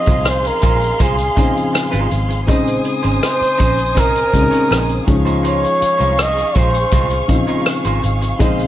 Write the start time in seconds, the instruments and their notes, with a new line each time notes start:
Already playing: grand piano F3 C4 C#4 D#4, violin section G#4 F5 C6, flugelhorn D#5
0.06 fingered electric bass C2, clean electric guitar G#3 D#4 F4 C5, kick, closed hi-hat
0.25 flugelhorn C5, cross-stick, closed hi-hat
0.44 flugelhorn A#4, muted clean electric guitar stroke, closed hi-hat
0.62 fingered electric bass A#1, clean electric guitar G#3 D#4 F4 C5, kick, closed hi-hat
0.81 muted clean electric guitar stroke, closed hi-hat
0.99 fingered electric bass C2, clean electric guitar G#3 D#4 F4 C5, flugelhorn G#4, kick, closed hi-hat
1.18 muted clean electric guitar stroke, closed hi-hat
1.36 fingered electric bass A#1, grand piano C#3 F3 C4 D#4, clean electric guitar G#3 D#4 F4 C5, kick, closed hi-hat
1.54 muted clean electric guitar stroke, closed hi-hat
1.73 muted clean electric guitar stroke, cross-stick, closed hi-hat
1.91 fingered electric bass G#1, clean electric guitar G#3 D#4 F4 C5, closed hi-hat
2.10 fingered electric bass G#1, muted clean electric guitar stroke, closed hi-hat
2.29 muted clean electric guitar stroke, closed hi-hat
2.47 fingered electric bass A#1, grand piano C#3 G#3 C4 D#4, clean electric guitar C#4 D#4 G#4 C5, violin section C5 G#5 D#6, kick, closed hi-hat
2.67 closed hi-hat
2.84 muted clean electric guitar stroke, closed hi-hat
3.03 fingered electric bass G#1, clean electric guitar C#4 D#4 G#4 C5, closed hi-hat
3.23 flugelhorn C5, cross-stick, closed hi-hat
3.39 muted clean electric guitar stroke, muted fingered electric bass stroke, closed hi-hat
3.58 fingered electric bass A#1, clean electric guitar C#4 D#4 G#4 C5, kick, cross-stick, closed hi-hat
3.76 muted clean electric guitar stroke, closed hi-hat
3.95 fingered electric bass C2, clean electric guitar C#4 D#4 G#4 C5, kick, closed hi-hat
3.99 flugelhorn A#4
4.15 closed hi-hat
4.32 fingered electric bass C#2, grand piano C#3 G#3 C4 C#4, muted clean electric guitar stroke, kick, closed hi-hat
4.42 grand piano D#4
4.51 clean electric guitar C#4 D#4 G#4 C#5, closed hi-hat
4.70 fingered electric bass A#1, clean electric guitar C#4 D#4 G#4 C5, cross-stick, closed hi-hat
4.89 closed hi-hat
5.07 fingered electric bass C#2, grand piano F3 G#3 C#4 D#4, violin section G#4 F5 C#6, muted clean electric guitar stroke, kick, closed hi-hat
5.25 clean electric guitar G#3 D#4 F4 C5, closed hi-hat
5.43 clean electric guitar G#3 D#4 F4 C5, closed hi-hat
5.48 flugelhorn C#5
5.65 closed hi-hat
5.80 muted clean electric guitar stroke, muted fingered electric bass stroke, closed hi-hat
5.98 fingered electric bass C2, clean electric guitar G#3 D#4 F4 C5, closed hi-hat
6.19 flugelhorn D#5, cross-stick, closed hi-hat
6.36 muted clean electric guitar stroke, closed hi-hat
6.55 fingered electric bass A#1, clean electric guitar G#3 D#4 F4 C5, flugelhorn C5, kick, closed hi-hat
6.73 muted clean electric guitar stroke, closed hi-hat
6.91 fingered electric bass C2, clean electric guitar G#3 D#4 F4 C5, kick, closed hi-hat
7.10 closed hi-hat
7.28 fingered electric bass A#1, grand piano C#3 F3 C4 D#4, muted clean electric guitar stroke, kick, closed hi-hat
7.47 clean electric guitar G#3 D#4 F4 C#5, closed hi-hat
7.66 muted clean electric guitar stroke, cross-stick, closed hi-hat
7.85 fingered electric bass G#1, clean electric guitar G#3 D#4 F4 C5, closed hi-hat
8.03 fingered electric bass G#1, muted clean electric guitar stroke, closed hi-hat
8.22 muted clean electric guitar stroke, closed hi-hat
8.39 fingered electric bass A#1, grand piano C#3 G#3 C4 D#4, clean electric guitar C#4 D#4 G#4 C5, violin section G#4 F5 C6, kick, closed hi-hat
8.59 closed hi-hat